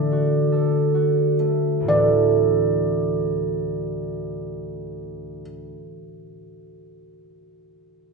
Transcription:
0.00 1.91 D3 medium
0.00 1.39 A3 soft
0.00 0.99 E4 soft
0.00 1.36 D5 medium
0.12 0.94 F#4 soft
0.52 1.93 A4 soft
0.94 1.90 F#4 soft
1.40 4.72 A3 soft
1.80 5.70 D2 soft
1.80 5.73 A2 soft
1.86 5.76 E3 soft
1.86 5.41 D4 soft
1.86 5.41 D5 medium
1.91 5.44 F#4 soft
1.91 5.46 A4 soft

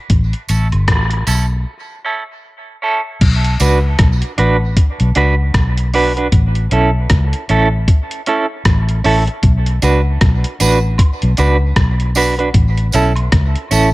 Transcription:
0.10 0.32 A1 medium
0.10 kick loud
0.10 closed hi-hat medium
0.33 closed hi-hat soft
0.48 0.71 A1 medium
0.48 0.67 C#4 medium
0.48 0.67 E4 medium
0.48 0.67 A4 medium
0.48 closed hi-hat medium
0.48 tambourine medium
0.72 0.87 G1 medium
0.72 closed hi-hat soft
0.72 high woodblock medium
0.88 1.25 A1 medium
0.88 kick loud
0.88 cross-stick loud
0.88 closed hi-hat medium
1.11 closed hi-hat medium
1.27 1.64 B1 medium
1.27 1.44 C#4 medium
1.27 1.45 E4 medium
1.27 1.45 A4 medium
1.27 closed hi-hat medium
1.27 tambourine medium
2.05 2.22 C#4 medium
2.05 2.23 E4 medium
2.05 2.23 A4 medium
2.82 3.00 C#4 medium
2.82 3.00 E4 medium
2.82 3.01 A4 medium
3.21 3.58 B1 loud
3.21 kick loud
3.21 closed hi-hat medium
3.21 crash medium
3.44 closed hi-hat soft
3.60 3.97 C#2 medium
3.60 3.78 D4 medium
3.60 3.78 F#4 medium
3.60 3.79 B4 medium
3.60 closed hi-hat medium
3.60 tambourine medium
3.99 4.21 B1 medium
3.99 kick loud
3.99 cross-stick loud
3.99 closed hi-hat medium
4.22 closed hi-hat medium
4.38 4.75 A1 medium
4.38 4.56 D4 medium
4.38 4.56 F#4 loud
4.38 4.56 B4 loud
4.38 closed hi-hat medium
4.77 kick loud
4.77 closed hi-hat medium
5.00 5.15 B1 medium
5.00 closed hi-hat medium
5.15 5.53 C#2 loud
5.15 5.33 D4 medium
5.15 5.34 F#4 medium
5.15 5.34 B4 medium
5.15 closed hi-hat medium
5.54 6.28 B1 medium
5.54 kick loud
5.54 cross-stick loud
5.54 closed hi-hat medium
5.77 closed hi-hat medium
5.94 6.11 D4 medium
5.94 6.12 F#4 medium
5.94 6.12 B4 loud
5.94 open hi-hat medium
6.17 6.27 D4 medium
6.17 6.27 F#4 medium
6.17 6.26 B4 medium
6.17 closed hi-hat soft
6.32 6.70 A1 loud
6.32 kick loud
6.32 closed hi-hat medium
6.55 closed hi-hat soft
6.71 7.09 B1 medium
6.71 6.89 C#4 medium
6.71 6.90 E4 medium
6.71 6.90 A4 medium
6.71 closed hi-hat medium
7.10 7.32 C#2 medium
7.10 kick loud
7.10 cross-stick loud
7.10 closed hi-hat medium
7.33 closed hi-hat medium
7.49 7.86 A1 medium
7.49 7.67 C#4 medium
7.49 7.67 E4 medium
7.49 7.68 A4 loud
7.49 closed hi-hat medium
7.88 kick loud
7.88 closed hi-hat medium
8.11 closed hi-hat medium
8.26 8.45 C#4 medium
8.26 8.45 E4 loud
8.26 8.45 A4 medium
8.26 closed hi-hat medium
8.65 9.03 A1 medium
8.65 kick loud
8.65 cross-stick loud
8.65 closed hi-hat medium
8.89 closed hi-hat medium
9.04 9.27 A1 medium
9.04 9.22 C#4 medium
9.04 9.23 E4 loud
9.04 9.23 A4 loud
9.04 open hi-hat medium
9.27 muted clean electric guitar stroke soft
9.27 closed hi-hat soft
9.43 9.81 B1 medium
9.43 kick loud
9.43 closed hi-hat medium
9.66 closed hi-hat soft
9.82 10.20 C#2 medium
9.82 10.00 D4 medium
9.82 10.00 F#4 medium
9.82 10.01 B4 medium
9.82 closed hi-hat medium
9.82 tambourine medium
10.21 10.44 B1 medium
10.21 kick loud
10.21 cross-stick loud
10.21 closed hi-hat medium
10.44 closed hi-hat medium
10.60 10.97 A1 loud
10.60 10.78 D4 medium
10.60 10.78 F#4 medium
10.60 10.78 B4 loud
10.60 closed hi-hat medium
10.60 tambourine medium
10.98 kick loud
10.98 closed hi-hat medium
10.98 high woodblock medium
11.22 11.38 B1 medium
11.22 closed hi-hat medium
11.37 11.75 C#2 loud
11.37 11.56 D4 medium
11.37 11.56 F#4 medium
11.37 11.56 B4 loud
11.37 closed hi-hat medium
11.37 tambourine soft
11.76 12.51 B1 loud
11.76 kick loud
11.76 cross-stick loud
11.76 closed hi-hat medium
12.00 closed hi-hat soft
12.15 12.33 D4 medium
12.15 12.34 F#4 medium
12.15 12.34 B4 medium
12.15 open hi-hat medium
12.15 tambourine medium
12.39 12.49 D4 medium
12.39 12.49 F#4 medium
12.39 12.48 B4 medium
12.39 closed hi-hat soft
12.54 12.92 A1 medium
12.54 kick loud
12.54 closed hi-hat medium
12.78 closed hi-hat soft
12.92 13.31 B1 medium
12.92 13.11 C#4 medium
12.92 13.12 E4 medium
12.92 13.12 A4 medium
12.92 closed hi-hat medium
12.92 tambourine medium
13.16 closed hi-hat soft
13.16 high woodblock medium
13.32 13.55 C#2 loud
13.32 kick loud
13.32 cross-stick loud
13.32 closed hi-hat loud
13.56 closed hi-hat soft
13.71 13.94 A1 medium
13.71 13.89 C#4 medium
13.71 13.89 E4 medium
13.71 13.89 A4 medium
13.71 closed hi-hat medium
13.71 tambourine medium

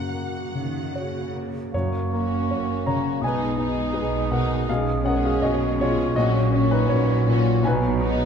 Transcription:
0.00 0.49 F#2 soft
0.00 1.74 F#2 soft
0.00 0.36 C#3 soft
0.00 0.13 A#3 soft
0.00 1.49 A#3 soft
0.00 0.95 F#4 soft
0.00 1.48 F#4 soft
0.00 0.95 C#5 soft
0.00 1.31 F#5 medium
0.13 0.78 A#3 soft
0.54 1.18 C#3 soft
0.54 0.93 D#3 soft
0.95 1.74 C#3 soft
0.95 1.31 F#4 soft
0.95 1.31 C#5 soft
1.34 1.73 A#3 soft
1.72 2.41 F#1 soft
1.72 2.41 F#2 soft
1.72 2.83 F#2 soft
1.72 3.19 F#2 soft
1.72 3.24 A#3 soft
1.72 3.19 A#3 soft
1.72 3.19 C#4 soft
1.72 2.50 F#4 soft
1.72 2.49 C#5 medium
1.72 3.23 C#6 soft
2.11 2.85 A#3 soft
2.11 2.72 A#3 soft
2.11 2.85 C#4 soft
2.11 2.86 F#4 soft
2.50 3.15 F#1 soft
2.50 3.15 F#2 soft
2.50 2.84 F#4 soft
2.50 2.83 C#5 soft
2.86 3.23 C#3 soft
2.86 3.22 A#3 soft
2.86 3.22 C#4 soft
2.86 3.22 F#4 soft
2.86 3.21 C#5 soft
2.86 3.20 A#5 medium
3.21 4.63 B1 soft
3.21 3.88 B1 soft
3.21 3.87 B2 soft
3.21 6.17 G#3 soft
3.21 3.58 G#3 soft
3.21 4.67 G#3 soft
3.21 3.97 B3 soft
3.21 4.68 D#4 soft
3.21 3.58 D#4 soft
3.21 3.59 G#4 soft
3.21 4.28 G#5 medium
3.21 5.45 D#6 soft
3.26 3.93 B4 soft
3.58 4.30 G#3 soft
3.58 4.16 D#4 soft
3.58 4.30 D#4 soft
3.58 4.31 G#4 soft
3.93 4.60 B1 soft
3.93 4.60 B2 medium
3.93 4.31 D#4 soft
3.93 4.27 G#4 soft
3.93 4.27 B4 soft
4.31 4.68 B2 soft
4.31 4.67 G#3 soft
4.31 4.68 D#4 soft
4.31 4.71 F#4 soft
4.31 4.68 G#4 soft
4.31 4.66 A#4 soft
4.31 4.66 F#5 medium
4.68 6.12 B1 soft
4.68 5.34 B1 medium
4.68 5.34 B2 soft
4.68 6.13 G#3 soft
4.68 6.15 C#4 soft
4.68 6.18 G#4 soft
4.68 5.05 G#4 soft
4.68 5.03 F5 medium
5.04 5.78 G#3 soft
5.04 5.64 C#4 soft
5.04 5.77 C#4 soft
5.04 5.78 G#4 soft
5.04 5.24 A#4 soft
5.04 5.23 F#5 medium
5.25 5.42 G#4 soft
5.25 5.42 F5 medium
5.42 6.07 B1 medium
5.42 6.07 B2 medium
5.42 5.77 F#4 soft
5.42 5.76 G#4 soft
5.42 5.77 C#5 soft
5.42 5.77 D#5 medium
5.42 8.10 C#6 medium
5.78 6.16 B2 soft
5.78 6.15 G#3 soft
5.78 6.14 C#4 soft
5.78 6.14 F4 medium
5.78 6.15 G#4 soft
5.78 6.14 C#5 medium
6.15 6.79 A#1 medium
6.15 7.60 A#1 medium
6.15 6.79 A#2 medium
6.15 8.25 F#3 medium
6.15 6.88 F#3 medium
6.15 6.51 A#3 soft
6.15 6.51 C#4 soft
6.15 6.51 F#4 soft
6.15 6.87 F#4 medium
6.15 6.67 F#4 medium
6.15 6.66 D#5 medium
6.52 7.25 A#3 medium
6.52 7.24 C#4 soft
6.52 7.11 C#4 soft
6.52 7.25 F#4 soft
6.71 6.88 D#4 medium
6.71 6.87 B4 medium
6.88 7.55 A#1 medium
6.88 7.56 A#2 medium
6.88 7.64 F#3 medium
6.88 7.64 C#4 medium
6.88 7.26 F#4 medium
6.88 7.22 F#4 soft
6.88 7.61 C#5 medium
7.25 7.65 A#2 soft
7.25 7.64 A#3 soft
7.25 7.64 C#4 soft
7.25 7.67 F4 medium
7.25 7.64 F#4 medium
7.63 8.25 B1 medium
7.63 8.25 B2 medium
7.63 8.25 B3 medium
7.63 8.25 D#4 medium
7.63 8.25 G#5 medium
7.67 8.25 B4 medium
8.00 8.25 G#3 soft
8.00 8.25 D#4 soft
8.00 8.25 D#4 medium
8.00 8.25 F#4 soft

